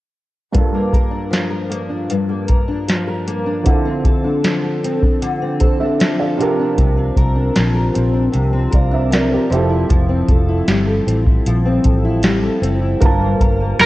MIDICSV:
0, 0, Header, 1, 6, 480
1, 0, Start_track
1, 0, Tempo, 780234
1, 335, Time_signature, 4, 2, 24, 8
1, 8525, End_track
2, 0, Start_track
2, 0, Title_t, "Electric slide guitar"
2, 0, Program_c, 0, 29
2, 8495, Note_on_c, 0, 70, 83
2, 8525, Note_off_c, 0, 70, 0
2, 8525, End_track
3, 0, Start_track
3, 0, Title_t, "Upright piano"
3, 0, Program_c, 1, 0
3, 322, Note_on_c, 1, 43, 55
3, 332, Note_on_c, 1, 58, 52
3, 338, Note_on_c, 1, 62, 49
3, 342, Note_on_c, 1, 65, 48
3, 354, Note_on_c, 1, 69, 64
3, 440, Control_c, 1, 64, 127
3, 2224, Note_off_c, 1, 43, 0
3, 2229, Note_off_c, 1, 58, 0
3, 2232, Note_off_c, 1, 62, 0
3, 2234, Note_off_c, 1, 65, 0
3, 2236, Note_on_c, 1, 50, 55
3, 2240, Note_off_c, 1, 69, 0
3, 2245, Note_on_c, 1, 60, 50
3, 2253, Note_on_c, 1, 64, 55
3, 2260, Note_on_c, 1, 65, 51
3, 2262, Control_c, 1, 64, 0
3, 2265, Note_on_c, 1, 69, 62
3, 2360, Control_c, 1, 64, 127
3, 3437, Note_off_c, 1, 69, 0
3, 3449, Note_on_c, 1, 72, 56
3, 3456, Note_on_c, 1, 69, 47
3, 3558, Note_off_c, 1, 72, 0
3, 3568, Note_on_c, 1, 72, 50
3, 3568, Note_on_c, 1, 76, 58
3, 3570, Note_off_c, 1, 69, 0
3, 3799, Note_off_c, 1, 72, 0
3, 3800, Note_off_c, 1, 76, 0
3, 3810, Note_on_c, 1, 77, 57
3, 3811, Note_on_c, 1, 74, 48
3, 3901, Note_off_c, 1, 50, 0
3, 3905, Note_off_c, 1, 60, 0
3, 3909, Note_off_c, 1, 64, 0
3, 3913, Note_off_c, 1, 65, 0
3, 3922, Note_on_c, 1, 62, 73
3, 3927, Note_on_c, 1, 65, 64
3, 3939, Note_on_c, 1, 67, 61
3, 3945, Control_c, 1, 64, 0
3, 3950, Note_on_c, 1, 70, 78
3, 4040, Note_off_c, 1, 77, 0
3, 4041, Note_off_c, 1, 74, 0
3, 4067, Control_c, 1, 64, 127
3, 5352, Note_off_c, 1, 67, 0
3, 5358, Note_off_c, 1, 70, 0
3, 5378, Note_on_c, 1, 77, 58
3, 5381, Note_on_c, 1, 74, 47
3, 5491, Note_off_c, 1, 77, 0
3, 5492, Note_off_c, 1, 74, 0
3, 5498, Note_on_c, 1, 76, 58
3, 5499, Note_on_c, 1, 72, 51
3, 5610, Note_off_c, 1, 76, 0
3, 5611, Note_off_c, 1, 72, 0
3, 5619, Note_on_c, 1, 74, 60
3, 5624, Note_on_c, 1, 70, 48
3, 5728, Note_off_c, 1, 70, 0
3, 5731, Note_off_c, 1, 74, 0
3, 5737, Note_on_c, 1, 70, 60
3, 5744, Note_on_c, 1, 67, 49
3, 5824, Note_off_c, 1, 62, 0
3, 5826, Note_off_c, 1, 65, 0
3, 5848, Note_on_c, 1, 60, 70
3, 5858, Note_off_c, 1, 67, 0
3, 5859, Note_on_c, 1, 64, 62
3, 5863, Control_c, 1, 64, 0
3, 5868, Note_on_c, 1, 67, 64
3, 5878, Note_on_c, 1, 69, 72
3, 5964, Note_off_c, 1, 70, 0
3, 5986, Control_c, 1, 64, 127
3, 7746, Note_off_c, 1, 60, 0
3, 7752, Note_off_c, 1, 64, 0
3, 7756, Note_off_c, 1, 67, 0
3, 7761, Note_off_c, 1, 69, 0
3, 8002, Note_on_c, 1, 58, 64
3, 8011, Note_on_c, 1, 62, 56
3, 8021, Control_c, 1, 64, 0
3, 8021, Note_on_c, 1, 65, 58
3, 8032, Note_on_c, 1, 81, 70
3, 8120, Control_c, 1, 64, 127
3, 8525, Note_off_c, 1, 58, 0
3, 8525, Note_off_c, 1, 62, 0
3, 8525, Note_off_c, 1, 65, 0
3, 8525, Note_off_c, 1, 81, 0
3, 8525, End_track
4, 0, Start_track
4, 0, Title_t, "Steel-string acoustic guitar"
4, 0, Program_c, 2, 25
4, 325, Note_on_c, 2, 43, 68
4, 455, Note_on_c, 2, 58, 52
4, 572, Note_on_c, 2, 70, 54
4, 683, Note_on_c, 2, 62, 48
4, 804, Note_on_c, 2, 53, 56
4, 918, Note_off_c, 2, 70, 0
4, 925, Note_on_c, 2, 70, 54
4, 1037, Note_off_c, 2, 58, 0
4, 1044, Note_on_c, 2, 58, 46
4, 1162, Note_off_c, 2, 62, 0
4, 1165, Note_on_c, 2, 62, 43
4, 1287, Note_off_c, 2, 43, 0
4, 1294, Note_on_c, 2, 43, 69
4, 1400, Note_off_c, 2, 58, 0
4, 1408, Note_on_c, 2, 58, 50
4, 1516, Note_off_c, 2, 70, 0
4, 1523, Note_on_c, 2, 70, 53
4, 1645, Note_off_c, 2, 62, 0
4, 1647, Note_on_c, 2, 62, 51
4, 1769, Note_off_c, 2, 53, 0
4, 1771, Note_on_c, 2, 53, 60
4, 1884, Note_off_c, 2, 70, 0
4, 1891, Note_on_c, 2, 70, 52
4, 2005, Note_off_c, 2, 58, 0
4, 2013, Note_on_c, 2, 58, 53
4, 2128, Note_off_c, 2, 62, 0
4, 2130, Note_on_c, 2, 62, 51
4, 2252, Note_on_c, 2, 50, 72
4, 2302, Note_off_c, 2, 58, 0
4, 2302, Note_off_c, 2, 70, 0
4, 2303, Note_off_c, 2, 43, 0
4, 2372, Note_on_c, 2, 60, 52
4, 2390, Note_off_c, 2, 62, 0
4, 2495, Note_on_c, 2, 69, 62
4, 2610, Note_on_c, 2, 62, 48
4, 2729, Note_off_c, 2, 53, 0
4, 2732, Note_on_c, 2, 53, 57
4, 2843, Note_off_c, 2, 69, 0
4, 2851, Note_on_c, 2, 69, 52
4, 2973, Note_off_c, 2, 60, 0
4, 2975, Note_on_c, 2, 60, 50
4, 3092, Note_off_c, 2, 62, 0
4, 3094, Note_on_c, 2, 62, 52
4, 3209, Note_off_c, 2, 50, 0
4, 3212, Note_on_c, 2, 50, 68
4, 3332, Note_off_c, 2, 60, 0
4, 3334, Note_on_c, 2, 60, 56
4, 3439, Note_off_c, 2, 69, 0
4, 3446, Note_on_c, 2, 69, 59
4, 3567, Note_off_c, 2, 62, 0
4, 3569, Note_on_c, 2, 62, 53
4, 3689, Note_off_c, 2, 53, 0
4, 3692, Note_on_c, 2, 53, 59
4, 3807, Note_off_c, 2, 69, 0
4, 3814, Note_on_c, 2, 69, 59
4, 3928, Note_off_c, 2, 50, 0
4, 3931, Note_on_c, 2, 48, 63
4, 3983, Note_off_c, 2, 69, 0
4, 4053, Note_off_c, 2, 62, 0
4, 4056, Note_on_c, 2, 62, 53
4, 4074, Note_off_c, 2, 60, 0
4, 4162, Note_off_c, 2, 48, 0
4, 4169, Note_on_c, 2, 48, 73
4, 4289, Note_on_c, 2, 60, 50
4, 4411, Note_on_c, 2, 70, 64
4, 4517, Note_off_c, 2, 62, 0
4, 4524, Note_on_c, 2, 62, 49
4, 4644, Note_off_c, 2, 53, 0
4, 4646, Note_on_c, 2, 53, 60
4, 4759, Note_off_c, 2, 70, 0
4, 4766, Note_on_c, 2, 70, 53
4, 4882, Note_off_c, 2, 60, 0
4, 4885, Note_on_c, 2, 60, 50
4, 4998, Note_off_c, 2, 62, 0
4, 5005, Note_on_c, 2, 62, 50
4, 5114, Note_off_c, 2, 48, 0
4, 5121, Note_on_c, 2, 48, 69
4, 5245, Note_off_c, 2, 60, 0
4, 5247, Note_on_c, 2, 60, 54
4, 5353, Note_off_c, 2, 70, 0
4, 5360, Note_on_c, 2, 70, 57
4, 5476, Note_off_c, 2, 62, 0
4, 5484, Note_on_c, 2, 62, 55
4, 5601, Note_off_c, 2, 53, 0
4, 5604, Note_on_c, 2, 53, 62
4, 5717, Note_off_c, 2, 70, 0
4, 5724, Note_on_c, 2, 70, 54
4, 5842, Note_off_c, 2, 48, 0
4, 5844, Note_off_c, 2, 53, 0
4, 5844, Note_on_c, 2, 53, 69
4, 5897, Note_off_c, 2, 62, 0
4, 5897, Note_off_c, 2, 70, 0
4, 5963, Note_on_c, 2, 64, 52
4, 6083, Note_off_c, 2, 53, 0
4, 6086, Note_on_c, 2, 53, 71
4, 6203, Note_off_c, 2, 60, 0
4, 6206, Note_on_c, 2, 60, 50
4, 6329, Note_on_c, 2, 69, 63
4, 6442, Note_off_c, 2, 64, 0
4, 6450, Note_on_c, 2, 64, 51
4, 6575, Note_on_c, 2, 55, 64
4, 6682, Note_off_c, 2, 69, 0
4, 6690, Note_on_c, 2, 69, 60
4, 6802, Note_off_c, 2, 60, 0
4, 6810, Note_on_c, 2, 60, 54
4, 6925, Note_off_c, 2, 64, 0
4, 6933, Note_on_c, 2, 64, 50
4, 7053, Note_off_c, 2, 53, 0
4, 7056, Note_on_c, 2, 53, 67
4, 7161, Note_off_c, 2, 60, 0
4, 7169, Note_on_c, 2, 60, 55
4, 7288, Note_off_c, 2, 69, 0
4, 7295, Note_on_c, 2, 69, 63
4, 7403, Note_off_c, 2, 64, 0
4, 7411, Note_on_c, 2, 64, 59
4, 7524, Note_off_c, 2, 55, 0
4, 7526, Note_on_c, 2, 55, 60
4, 7636, Note_off_c, 2, 69, 0
4, 7644, Note_on_c, 2, 69, 56
4, 7757, Note_off_c, 2, 60, 0
4, 7764, Note_on_c, 2, 60, 57
4, 7881, Note_off_c, 2, 64, 0
4, 7888, Note_on_c, 2, 64, 56
4, 8003, Note_on_c, 2, 43, 74
4, 8005, Note_off_c, 2, 69, 0
4, 8007, Note_on_c, 2, 70, 68
4, 8057, Note_off_c, 2, 60, 0
4, 8059, Note_off_c, 2, 64, 0
4, 8127, Note_on_c, 2, 58, 55
4, 8240, Note_off_c, 2, 70, 0
4, 8247, Note_on_c, 2, 70, 62
4, 8359, Note_off_c, 2, 58, 0
4, 8366, Note_on_c, 2, 58, 50
4, 8482, Note_on_c, 2, 62, 57
4, 8525, Note_off_c, 2, 43, 0
4, 8525, Note_off_c, 2, 53, 0
4, 8525, Note_off_c, 2, 55, 0
4, 8525, Note_off_c, 2, 58, 0
4, 8525, Note_off_c, 2, 62, 0
4, 8525, Note_off_c, 2, 70, 0
4, 8525, End_track
5, 0, Start_track
5, 0, Title_t, "Fingered electric bass"
5, 0, Program_c, 3, 33
5, 4170, Note_on_c, 3, 36, 92
5, 4364, Note_off_c, 3, 36, 0
5, 4408, Note_on_c, 3, 36, 96
5, 4603, Note_off_c, 3, 36, 0
5, 4657, Note_on_c, 3, 34, 85
5, 4849, Note_off_c, 3, 34, 0
5, 4897, Note_on_c, 3, 34, 74
5, 5088, Note_off_c, 3, 34, 0
5, 5135, Note_on_c, 3, 36, 84
5, 5327, Note_off_c, 3, 36, 0
5, 5373, Note_on_c, 3, 36, 73
5, 5758, Note_off_c, 3, 36, 0
5, 5851, Note_on_c, 3, 29, 82
5, 6044, Note_off_c, 3, 29, 0
5, 6094, Note_on_c, 3, 29, 93
5, 6286, Note_off_c, 3, 29, 0
5, 6327, Note_on_c, 3, 29, 91
5, 6522, Note_off_c, 3, 29, 0
5, 6569, Note_on_c, 3, 31, 85
5, 6763, Note_off_c, 3, 31, 0
5, 6810, Note_on_c, 3, 33, 74
5, 7004, Note_off_c, 3, 33, 0
5, 7052, Note_on_c, 3, 34, 91
5, 7245, Note_off_c, 3, 34, 0
5, 7291, Note_on_c, 3, 33, 80
5, 7676, Note_off_c, 3, 33, 0
5, 7762, Note_on_c, 3, 30, 87
5, 7959, Note_off_c, 3, 30, 0
5, 8010, Note_on_c, 3, 31, 88
5, 8203, Note_off_c, 3, 31, 0
5, 8246, Note_on_c, 3, 31, 97
5, 8441, Note_off_c, 3, 31, 0
5, 8485, Note_on_c, 3, 29, 85
5, 8525, Note_off_c, 3, 29, 0
5, 8525, End_track
6, 0, Start_track
6, 0, Title_t, "Drums"
6, 334, Note_on_c, 9, 42, 67
6, 336, Note_on_c, 9, 36, 94
6, 396, Note_off_c, 9, 42, 0
6, 398, Note_off_c, 9, 36, 0
6, 573, Note_on_c, 9, 36, 71
6, 579, Note_on_c, 9, 42, 50
6, 634, Note_off_c, 9, 36, 0
6, 640, Note_off_c, 9, 42, 0
6, 818, Note_on_c, 9, 42, 69
6, 820, Note_on_c, 9, 38, 84
6, 880, Note_off_c, 9, 42, 0
6, 882, Note_off_c, 9, 38, 0
6, 1056, Note_on_c, 9, 42, 62
6, 1118, Note_off_c, 9, 42, 0
6, 1291, Note_on_c, 9, 42, 69
6, 1352, Note_off_c, 9, 42, 0
6, 1526, Note_on_c, 9, 42, 65
6, 1534, Note_on_c, 9, 36, 74
6, 1588, Note_off_c, 9, 42, 0
6, 1596, Note_off_c, 9, 36, 0
6, 1774, Note_on_c, 9, 42, 73
6, 1781, Note_on_c, 9, 38, 88
6, 1836, Note_off_c, 9, 42, 0
6, 1842, Note_off_c, 9, 38, 0
6, 2016, Note_on_c, 9, 42, 58
6, 2077, Note_off_c, 9, 42, 0
6, 2251, Note_on_c, 9, 42, 71
6, 2256, Note_on_c, 9, 36, 86
6, 2313, Note_off_c, 9, 42, 0
6, 2317, Note_off_c, 9, 36, 0
6, 2491, Note_on_c, 9, 36, 84
6, 2493, Note_on_c, 9, 42, 54
6, 2553, Note_off_c, 9, 36, 0
6, 2554, Note_off_c, 9, 42, 0
6, 2733, Note_on_c, 9, 42, 73
6, 2734, Note_on_c, 9, 38, 87
6, 2794, Note_off_c, 9, 42, 0
6, 2796, Note_off_c, 9, 38, 0
6, 2980, Note_on_c, 9, 42, 60
6, 3041, Note_off_c, 9, 42, 0
6, 3093, Note_on_c, 9, 36, 78
6, 3155, Note_off_c, 9, 36, 0
6, 3213, Note_on_c, 9, 42, 70
6, 3275, Note_off_c, 9, 42, 0
6, 3446, Note_on_c, 9, 42, 63
6, 3453, Note_on_c, 9, 36, 75
6, 3507, Note_off_c, 9, 42, 0
6, 3514, Note_off_c, 9, 36, 0
6, 3692, Note_on_c, 9, 42, 80
6, 3699, Note_on_c, 9, 38, 102
6, 3754, Note_off_c, 9, 42, 0
6, 3761, Note_off_c, 9, 38, 0
6, 3940, Note_on_c, 9, 42, 57
6, 4002, Note_off_c, 9, 42, 0
6, 4171, Note_on_c, 9, 42, 68
6, 4172, Note_on_c, 9, 36, 91
6, 4233, Note_off_c, 9, 36, 0
6, 4233, Note_off_c, 9, 42, 0
6, 4408, Note_on_c, 9, 36, 70
6, 4413, Note_on_c, 9, 42, 53
6, 4470, Note_off_c, 9, 36, 0
6, 4474, Note_off_c, 9, 42, 0
6, 4648, Note_on_c, 9, 42, 76
6, 4650, Note_on_c, 9, 38, 88
6, 4710, Note_off_c, 9, 42, 0
6, 4712, Note_off_c, 9, 38, 0
6, 4892, Note_on_c, 9, 42, 64
6, 4954, Note_off_c, 9, 42, 0
6, 5128, Note_on_c, 9, 42, 73
6, 5189, Note_off_c, 9, 42, 0
6, 5368, Note_on_c, 9, 42, 63
6, 5373, Note_on_c, 9, 36, 76
6, 5430, Note_off_c, 9, 42, 0
6, 5434, Note_off_c, 9, 36, 0
6, 5613, Note_on_c, 9, 42, 77
6, 5620, Note_on_c, 9, 38, 101
6, 5675, Note_off_c, 9, 42, 0
6, 5681, Note_off_c, 9, 38, 0
6, 5860, Note_on_c, 9, 42, 55
6, 5921, Note_off_c, 9, 42, 0
6, 6092, Note_on_c, 9, 42, 74
6, 6093, Note_on_c, 9, 36, 90
6, 6153, Note_off_c, 9, 42, 0
6, 6154, Note_off_c, 9, 36, 0
6, 6327, Note_on_c, 9, 42, 48
6, 6328, Note_on_c, 9, 36, 85
6, 6388, Note_off_c, 9, 42, 0
6, 6389, Note_off_c, 9, 36, 0
6, 6569, Note_on_c, 9, 42, 68
6, 6571, Note_on_c, 9, 38, 90
6, 6631, Note_off_c, 9, 42, 0
6, 6633, Note_off_c, 9, 38, 0
6, 6817, Note_on_c, 9, 42, 64
6, 6878, Note_off_c, 9, 42, 0
6, 6931, Note_on_c, 9, 36, 80
6, 6993, Note_off_c, 9, 36, 0
6, 7052, Note_on_c, 9, 42, 80
6, 7113, Note_off_c, 9, 42, 0
6, 7285, Note_on_c, 9, 42, 69
6, 7291, Note_on_c, 9, 36, 75
6, 7346, Note_off_c, 9, 42, 0
6, 7353, Note_off_c, 9, 36, 0
6, 7523, Note_on_c, 9, 42, 81
6, 7530, Note_on_c, 9, 38, 104
6, 7585, Note_off_c, 9, 42, 0
6, 7591, Note_off_c, 9, 38, 0
6, 7773, Note_on_c, 9, 42, 58
6, 7834, Note_off_c, 9, 42, 0
6, 8009, Note_on_c, 9, 42, 78
6, 8010, Note_on_c, 9, 36, 91
6, 8071, Note_off_c, 9, 42, 0
6, 8072, Note_off_c, 9, 36, 0
6, 8248, Note_on_c, 9, 36, 81
6, 8251, Note_on_c, 9, 42, 54
6, 8309, Note_off_c, 9, 36, 0
6, 8312, Note_off_c, 9, 42, 0
6, 8485, Note_on_c, 9, 42, 74
6, 8487, Note_on_c, 9, 38, 90
6, 8525, Note_off_c, 9, 38, 0
6, 8525, Note_off_c, 9, 42, 0
6, 8525, End_track
0, 0, End_of_file